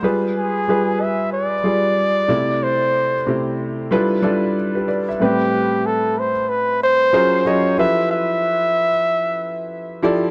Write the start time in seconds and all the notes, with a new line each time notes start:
0.03 G3 F4 G#4 B4
0.38 G#4
0.68 G3 F4 G#4 B4
1.01 E5
1.33 D5
1.64 G3 F4 G#4 D5
2.28 C3 A3 E4 D5
2.63 C5
3.27 C3 A3 E4 G4
3.91 G3 D4 E4 F4 A4 B4
4.22 G3 D4 E4 F4 A4 D5
4.75 G4 B4
4.88 B4 D5
5.09 E5
5.20 A2 G3 C4 G4 B4
5.86 A4
6.19 C5
6.49 B4
6.83 C5
7.13 F#3 C#4 F4 G#4 A#4 C5
7.45 F#3 C#4 F4 G#4 A#4 C#5 D#5
7.78 F3 E4 G4 A4 B4 E5
8.11 E5
10.02 F3 E4 G4 A4 D5